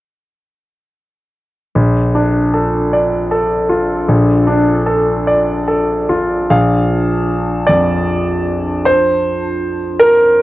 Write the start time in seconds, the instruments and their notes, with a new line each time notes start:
1.74 grand piano A#1, ambient pad D4 F4 A4
2.15 grand piano D4
2.54 grand piano A4
2.93 grand piano D5
3.31 grand piano A4
3.69 grand piano F4
4.08 grand piano A#1
4.47 grand piano D4
4.86 grand piano A4
5.27 grand piano D5
5.68 grand piano A4
6.09 grand piano F4
6.50 grand piano A#1 F5, ambient pad D4 F4 A5
7.67 grand piano F2 D5
8.85 grand piano C5
10.00 grand piano A#4